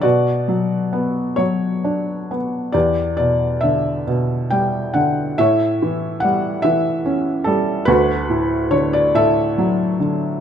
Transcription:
<<
  \new Staff \with { instrumentName = "Felt piano" } { \time 6/8 \key e \dorian \tempo 4. = 46 << { d''4. cis''4 r8 | d''8 d''8 e''4 g''8 fis''8 | e''4 fis''8 e''4 a'8 | b'4 cis''16 d''16 e''4. | } \\ { fis'4. r4. | g'4. r4. | cis''4. r4. | fis'4. a'4. | } >> }
  \new Staff \with { instrumentName = "Felt piano" } { \clef bass \time 6/8 \key e \dorian b,8 fis8 b8 fis8 d'8 b8 | e,8 b,8 d8 b,8 g8 d8 | a,8 e8 g8 e8 cis'8 g8 | d,8 a,8 d8 a,8 fis8 d8 | }
>>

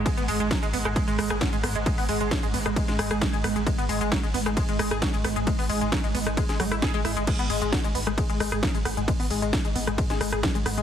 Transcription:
<<
  \new Staff \with { instrumentName = "Synth arpeggio sound" } { \clef bass \time 4/4 \key gis \minor \tempo 4 = 133 gis16 b16 gis16 gis16 fis16 gis16 b16 gis16 gis16 gis16 gis16 gis'16 fis16 gis16 b16 gis16 | gis16 b16 gis16 gis16 fis16 gis16 b16 gis16 gis16 gis16 gis16 gis'16 fis16 gis16 b16 gis16 | gis16 b16 gis16 gis16 fis16 gis16 b16 gis16 gis16 gis16 gis16 gis'16 fis16 gis16 b16 gis16 | gis16 b16 gis16 gis16 fis16 gis16 b16 gis16 gis16 gis16 fis16 e'16 gis'16 gis16 e'16 gis16 |
gis16 b16 gis16 gis16 fis16 gis16 b16 gis16 gis16 gis16 gis16 gis'16 fis16 gis16 b16 gis16 | gis16 b16 gis16 gis16 fis16 gis16 b16 gis16 gis16 gis16 gis16 gis'16 fis16 gis16 b16 gis16 | }
  \new Staff \with { instrumentName = "Synth drone" } { \clef bass \time 4/4 \key gis \minor <gis, gis>1~ | <gis, gis>1~ | <gis, gis>1~ | <gis, gis>1 |
<gis, gis>1~ | <gis, gis>1 | }
  \new Staff \with { instrumentName = "Sub bass" } { \clef bass \time 4/4 \key gis \minor r16 gis,,16 gis,,16 gis,,16 r16 gis,,16 gis,,16 gis,,16 r16 gis,,16 gis,,16 gis,,16 r16 gis,,16 gis,,16 gis,,16 | r16 gis,,16 gis,,16 gis,,16 r16 gis,,16 gis,,16 gis,,16 r16 gis,,16 gis,,16 gis,,16 r16 gis,,16 gis,,16 gis,,16 | r16 gis,,16 gis,,16 gis,,16 r16 gis,,16 gis,,16 gis,,16 r16 gis,,16 gis,,16 gis,,16 r16 gis,,16 gis,,16 gis,,16 | r16 gis,,16 gis,,16 gis,,16 r16 gis,,16 gis,,16 gis,,16 r16 gis,,16 gis,,16 gis,,16 r16 gis,,16 gis,,16 gis,,16 |
r16 gis,,16 gis,,16 gis,,16 r16 gis,,16 gis,,16 gis,,16 r16 gis,,16 gis,,16 gis,,16 r16 gis,,16 gis,,16 gis,,16 | r16 gis,,16 gis,,16 gis,,16 r16 gis,,16 gis,,16 gis,,16 r16 gis,,16 gis,,16 gis,,16 r16 gis,,16 gis,,16 gis,,16 | }
  \new DrumStaff \with { instrumentName = "Drums" } \drummode { \time 4/4 <hh bd cymr>16 hh16 hho16 hh16 <hh bd cymr sn>16 hh16 hho16 <hh ss>16 <hh bd cymr>16 hh16 <hho ss>16 <hh ss>16 <hh bd cymr sn>16 hh16 <hho ss>16 hh16 | <hh bd cymr>16 hho16 hho16 hh16 <hh bd cymr sn>16 hh16 hho16 <hh ss>16 <hh bd cymr>16 <hh sn>16 <hho ss>16 <hh ss>16 <hh bd cymr sn>16 hh16 <hho ss>16 hh16 | <hh bd cymr>16 hh16 hho16 hh16 <hh bd cymr sn>16 hh16 hho16 <hh ss>16 <hh bd cymr>16 hh16 <hho ss>16 <hh ss>16 <hh bd cymr sn>16 hh16 <hho ss>16 hh16 | <hh bd cymr>16 hho16 hho16 hh16 <hh bd cymr sn>16 hh16 hho16 <hh ss>16 <hh bd cymr>16 <hh sn>16 <hho ss>16 <hh ss>16 <hh bd cymr sn>16 hh16 <hho ss>16 hh16 |
<cymc hh bd cymr>16 hh16 hho16 hh16 <hh bd cymr sn>16 hh16 hho16 <hh ss>16 <hh bd cymr>16 hh16 <hho ss>16 <hh ss>16 <hh bd cymr sn>16 hh16 <hho ss>16 hh16 | <hh bd cymr>16 hho16 hho16 hh16 <hh bd cymr sn>16 hh16 hho16 <hh ss>16 <hh bd cymr>16 <hh sn>16 <hho ss>16 <hh ss>16 <hh bd cymr sn>16 hh16 <hho ss>16 hh16 | }
>>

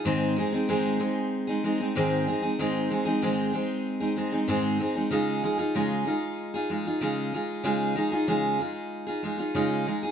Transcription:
\new Staff \with { instrumentName = "Steel-string acoustic guitar" } { \time 4/4 \key des \major \tempo 4 = 95 <aes, ees aes c' ees' aes'>8 <aes c' ees' aes'>16 <aes c' ees' aes'>16 <aes, ees aes c' ees' aes'>8 <aes c' ees' aes'>8. <aes c' ees' aes'>16 <aes c' ees' aes'>16 <aes c' ees' aes'>16 <aes, ees aes c' ees' aes'>8 <aes c' ees' aes'>16 <aes c' ees' aes'>16 | <aes, ees aes c' ees' aes'>8 <aes c' ees' aes'>16 <aes c' ees' aes'>16 <aes, ees aes c' ees' aes'>8 <aes c' ees' aes'>8. <aes c' ees' aes'>16 <aes c' ees' aes'>16 <aes c' ees' aes'>16 <aes, ees aes c' ees' aes'>8 <aes c' ees' aes'>16 <aes c' ees' aes'>16 | <des aes ees' f' aes'>8 <aes ees' f' aes'>16 <ees' f' aes'>16 <des aes ees' f' aes'>8 <aes ees' f' aes'>8. <ees' f' aes'>16 <aes ees' f' aes'>16 <ees' f' aes'>16 <des aes ees' f' aes'>8 <aes ees' f' aes'>8 | <des aes ees' f' aes'>8 <aes ees' f' aes'>16 <ees' f' aes'>16 <des aes ees' f' aes'>8 <aes ees' f' aes'>8. <ees' f' aes'>16 <aes ees' f' aes'>16 <ees' f' aes'>16 <des aes ees' f' aes'>8 <aes ees' f' aes'>16 <ees' f' aes'>16 | }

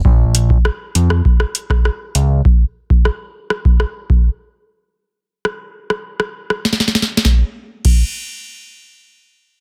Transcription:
<<
  \new Staff \with { instrumentName = "Analog synth bass" } { \clef bass \time 4/4 \key bes \minor \tempo 4 = 100 bes,,4 r8 f,8 r4. des,8 | r1 | r1 | r1 | }
  \new DrumStaff \with { instrumentName = "Drums" } \drummode { \time 4/4 bd8 hh16 bd16 ss8 hh16 ss16 bd16 ss16 hh16 <bd ss>16 ss8 hh8 | bd8. bd16 ss8. ss16 bd16 ss8 bd16 r4 | r4 ss8. ss16 r16 ss8 ss16 sn32 sn32 sn32 sn32 sn32 sn16 sn32 | <bd sn>4 <cymc bd>4 r4 r4 | }
>>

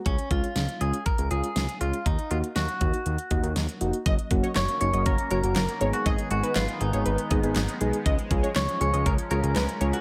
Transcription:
<<
  \new Staff \with { instrumentName = "Analog polysynth" } { \time 4/4 \key cis \mixolydian \tempo 4 = 120 r1 | r1 | dis''16 r8 cis''16 cis''16 r8 dis''16 cis''8 cis''16 r16 ais'16 r16 cis''16 r16 | dis''16 r8 b'16 b'16 r8 cis''16 b'8 dis''16 r4 r16 |
dis''16 r8 cis''16 cis''16 r8 dis''16 cis''8 cis''16 r16 b'16 r16 cis''16 r16 | }
  \new Staff \with { instrumentName = "Clean electric guitar" } { \time 4/4 \key cis \mixolydian cis'8 eis'4 gis'8 ais'8 gis'4 eis'8 | dis'8 eis'8 fis'2 r4 | r4 cis''8 cis''8 ais'8 ais'4~ ais'16 fis'16 | gis'8 fis'8 eis'8 dis'2 r8 |
r4 cis''8 cis''8 ais'8 ais'4~ ais'16 fis'16 | }
  \new Staff \with { instrumentName = "Synth keys" } { \time 4/4 \key cis \mixolydian r8 <gis cis' eis'>16 r8. <gis cis' eis'>16 r8. <gis cis' eis'>16 r8. <gis cis' eis'>16 r16 | r8 <ais dis' fis'>16 r8. <ais dis' fis'>16 r8. <ais dis' fis'>16 r8. <ais dis' fis'>16 r16 | r8 <fis ais cis' fis'>16 r8. <fis ais cis' dis'>16 <fis ais cis' fis'>16 r8 <fis ais cis' fis'>16 <fis ais cis' fis'>16 r8 <gis b dis' gis'>8~ | <gis b dis' gis'>16 r16 <gis b dis' gis'>16 r8. <gis b dis' gis'>16 <gis b dis' gis'>16 r8 <gis b dis' gis'>16 <gis b dis' gis'>16 r8 <gis b dis' gis'>16 r16 |
r8 <gis cis' eis' gis'>16 r8. <gis cis' eis' gis'>16 <gis cis' eis' gis'>16 r8 <gis cis' eis' gis'>16 <gis cis' eis' gis'>16 r8 <gis cis' eis' gis'>16 r16 | }
  \new Staff \with { instrumentName = "Analog synth pad" } { \time 4/4 \key cis \mixolydian << { r1 | r1 | <fis cis'>2.~ <fis cis'>8 <dis b>8~ | <dis b>1 |
<eis cis'>1 | } \\ { r1 | r1 | ais2.~ ais8 gis8~ | gis1~ |
gis1 | } >> }
  \new Staff \with { instrumentName = "Analog synth bass" } { \clef bass \time 4/4 \key cis \mixolydian cis,16 r16 cis,16 r16 cis,16 r16 cis,16 r8 cis,16 cis,16 r16 cis,16 r16 cis,16 r16 | dis,16 r16 dis,16 r16 dis,16 r16 dis,16 r16 dis,16 r16 dis,16 dis,16 dis,16 r16 eis,,16 r16 | fis,,16 r16 fis,,16 r16 fis,,16 r16 fis,,16 fis,,16 fis,,16 r16 fis,,16 fis,,16 fis,,16 r16 gis,,16 r16 | gis,,16 r16 gis,,16 r16 gis,,16 r16 gis,,16 gis,,16 gis,,16 r16 gis,,16 gis,,16 gis,,16 r16 b,,16 r16 |
cis,16 r16 cis,16 r16 cis,16 r16 cis,16 cis,16 cis,16 r16 cis,16 cis,16 cis,16 r16 cis,16 r16 | }
  \new DrumStaff \with { instrumentName = "Drums" } \drummode { \time 4/4 <hh bd>16 hh16 <hh bd>16 hh16 <hh sn>16 hh16 hh16 hh16 <hh bd>16 hh16 hh16 hh16 <hh sn>16 hh16 hh16 hh16 | <hh bd>16 hh16 hh16 hh16 <hh sn>16 hh16 <hh bd>16 hh16 hh16 hh16 <hh bd>16 hh16 <hh sn>16 hh16 hh16 hh16 | <hh bd>16 hh16 <hh bd>16 hh16 <hc hh sn>16 hh16 hh16 hh16 <hh bd>16 hh16 hh16 hh16 <hc hh sn>16 hh16 hh16 hh16 | <hh bd>16 hh16 hh16 hh16 <hc hh sn>16 hh16 hh16 hh16 hh16 hh16 <hh bd>16 hh16 <hc hh sn>16 hh16 hh16 hh16 |
<hh bd>16 hh16 <hh bd>16 hh16 <hc hh sn>16 hh16 hh16 hh16 <hh bd>16 hh16 hh16 hh16 <hc hh sn>16 hh16 hh16 hh16 | }
>>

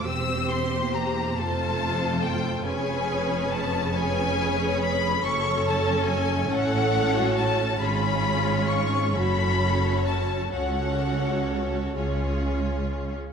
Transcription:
<<
  \new Staff \with { instrumentName = "Violin section" } { \time 6/8 \key f \major \tempo 4. = 46 e'''8 c'''8 bes''8 a''4 g''8 | \key fis \minor gis''4 a''8 gis''4 b''8 | cis'''8 a''8 gis''8 fis''4 a''8 | b''4 cis'''8 b''4 a''8 |
fis''4. r4. | }
  \new Staff \with { instrumentName = "Violin section" } { \time 6/8 \key f \major <g' c''>4. <a' c''>4. | \key fis \minor <b' cis''>4. <b' cis''>4. | <a' cis''>4. <a' cis''>4. | <gis' cis''>4. <a' cis''>4. |
<a' cis''>4. <gis' cis''>4~ <gis' cis''>16 r16 | }
  \new Staff \with { instrumentName = "Viola section" } { \time 6/8 \key f \major << { g'4. f'4. | \key fis \minor gis'4. gis'4. | a'4. a'8. fis'8. | eis'4. fis'4. |
fis'4. eis'4~ eis'16 r16 | } \\ { c'8. bes8. a4. | cis'4. cis'4. | cis'4. cis'4. | cis'4. cis'4. |
cis'4. cis'4~ cis'16 r16 | } >> }
  \new Staff \with { instrumentName = "Cello section" } { \clef bass \time 6/8 \key f \major e,4. f,4. | \key fis \minor eis,2. | fis,4. a,4. | gis,4. fis,4. |
cis,4. cis,4~ cis,16 r16 | }
  \new Staff \with { instrumentName = "Double bass section" } { \clef bass \time 6/8 \key f \major e,,4. f,,4. | \key fis \minor eis,,2. | fis,,4. a,,4. | gis,,4. fis,,4. |
cis,4. cis,4~ cis,16 r16 | }
>>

